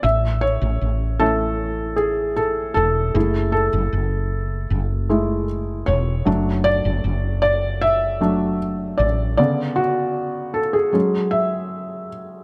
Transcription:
<<
  \new Staff \with { instrumentName = "Felt piano" } { \time 4/4 \key a \major \tempo 4 = 77 e''8 cis''4 a'4 gis'8 a'8 a'8~ | a'8 a'2 r4 cis''8~ | cis''8 d''4 d''8 e''4. d''8 | d''8 fis'4 a'16 gis'8. e''4. | }
  \new Staff \with { instrumentName = "Felt piano" } { \time 4/4 \key a \major r4. <e a cis'>4. r4 | <a e' gis'>8 r2 <gis a e'>8 r4 | <fis a d'>2~ <fis a d'>8 <fis a d'>8 r4 | <cis d b>2 <fis gis cis'>2 | }
  \new Staff \with { instrumentName = "Fretless electric bass" } { \clef bass \time 4/4 \key a \major a,,8. a,,16 a,,2~ a,,8 e,,8 | fis,,8. fis,,16 fis,,4 fis,,4. e,,8 | fis,,8. fis,,16 fis,,2~ fis,,8 a,,8 | r1 | }
>>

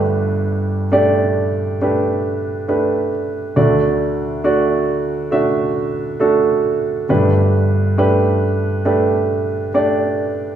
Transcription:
<<
  \new Staff \with { instrumentName = "Grand piano" } { \time 4/4 \key g \major \tempo 4 = 68 <a d' g' b'>4 <a d' g' d''>4 <a d' g' b'>4 <a d' g' b'>4 | <a d' fis' d''>4 <a d' fis' d''>4 <a d' fis' e''>4 <a d' fis' a'>4 | <a d' g' b'>4 <a d' g' b'>4 <a d' g' b'>4 <a d' g' d''>4 | }
  \new Staff \with { instrumentName = "Grand piano" } { \clef bass \time 4/4 \key g \major <g,, g,>2.~ <g,, g,>8 r8 | <d, d>1 | <g,, g,>1 | }
>>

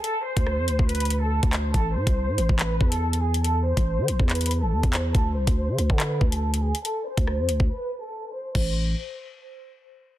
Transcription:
<<
  \new Staff \with { instrumentName = "Violin section" } { \time 4/4 \key d \dorian \tempo 4 = 141 a'8 c''4. b'8. a'8. c''8 | a'8 c''4. b'8. a'8. gis'8 | a'8 c''4. b'8. a'8. c''8 | a'8 c''4. b'8. a'8. gis'8 |
a'8 c''4. b'8. a'8. c''8 | c''8 r2. r8 | }
  \new Staff \with { instrumentName = "808-style bass" } { \clef bass \time 4/4 \key d \dorian r8. d,8 f,16 d,16 d,4. d,8. | a,,8 a,16 c,8 a,16 a,,16 a,,8. e,4.~ | e,8. a,,8 e16 a,,16 e,4 gis,,16 e,16 e,8. | d,8 c,16 d,8 d16 d,16 d8. d,4~ d,16 r16 |
r8. d,8 f,16 d,16 d,16 r2 | a,,4 r2. | }
  \new DrumStaff \with { instrumentName = "Drums" } \drummode { \time 4/4 hh8. <hh bd>16 ss8 hh16 bd16 hh32 hh32 hh32 hh32 hh8 r16 <hh bd>16 <hc hh>8 | <hh bd>8. <hh bd>16 r8 hh16 bd16 <hc hh>8 bd16 hh16 r16 hh8 hh16 | hh8. <hh bd>16 r8 hh16 bd16 <hc hh>32 hh32 hh32 hh32 hh8 r16 <hh bd>16 <hc hh>8 | <hh bd>8. <hh bd>16 r8 hh16 bd16 <hc hh>8 bd16 hh16 r16 hh8 hh16 |
hh8. <hh bd>16 ss8 hh16 bd16 r4 r4 | <cymc bd>4 r4 r4 r4 | }
>>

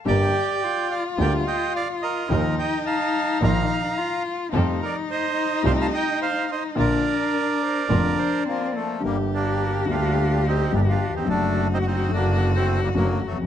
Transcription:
<<
  \new Staff \with { instrumentName = "Clarinet" } { \time 4/4 \key bes \major \tempo 4 = 107 r1 | r1 | r1 | r4 bes'8 c''8 bes'8 c''8 d''4 |
\key d \phrygian r1 | r1 | }
  \new Staff \with { instrumentName = "Bandoneon" } { \time 4/4 \key bes \major << { g''4. f''8 g''8 g''8 f''8 ees''8~ | ees''8 g''8 a''4 bes''4. r8 | r8 d''8 ees''4 f''16 a''16 g''8 f''8 ees''8 | d''2. bes8 a8 |
\key d \phrygian bes8 d'4 f'4 ees'8 d'16 f'8 ees'16 | d'8. ees'32 fis'32 ees'8 d'8. c'8 bes16 bes8 a8 | } \\ { d''4. d''8 d''8 ees''8 d''8 bes'8~ | bes'8 ees''8 f''4 f''4. r8 | r8 bes'8 c''4 c''16 f''16 ees''8 c''8 c''8 | bes'2. f8 f8 |
g8 bes4 d'4 c'8 bes16 d'8 c'16 | a8. c'16 c'8 bes8. a8 g16 fis8 fis8 | } >> }
  \new Staff \with { instrumentName = "String section" } { \time 4/4 \key bes \major <d' g' bes'>8 r4. <d' g' bes'>8 r4. | <ees' f' bes'>8 r4. <ees' f' bes'>8 r4. | <f' g' a'>8 r4. <f' g' a'>8 r4. | <d' f' bes'>8 r4. <d' f' bes'>8 r4. |
\key d \phrygian r1 | r1 | }
  \new Staff \with { instrumentName = "Cello" } { \time 4/4 \key bes \major g'4 f'2. | ees'2. f'4 | ees'1 | d'2 d'4 c'8 bes8 |
\key d \phrygian g'1 | fis'1 | }
  \new Staff \with { instrumentName = "Grand piano" } { \clef bass \time 4/4 \key bes \major <g,, g, d g bes g'>8 r4. <d, d g bes g'>8 r4. | <ees, ees f bes f'>8 r4. <bes,, bes, ees f bes f'>8 r4. | <f, c f g a f'>8 r4. <c, c g a f'>8 r4. | <bes,, bes, d f bes f'>8 r4. <f,, f, d f bes f'>8 r4. |
\key d \phrygian <g,, g, d g bes g'>4. <d, d g bes g'>4. <g,, g, d g bes g'>8 r32 ees,32 e,32 f,32 | <fis, d fis a fis'>4. <fis, d fis fis' a'>4. <fis, d fis a fis'>8 r32 e,32 f,32 fis,32 | }
  \new Staff \with { instrumentName = "Double bass" } { \clef bass \time 4/4 \key bes \major g,,8 r4. d,8 r4. | ees,8 r4. bes,,8 r4. | f,8 r4. c,8 r4. | bes,,8 r4. f,,8 r4. |
\key d \phrygian g,,4. d,4. g,,8 r8 | fis,,4. fis,,4. fis,,8 f,,8 | }
>>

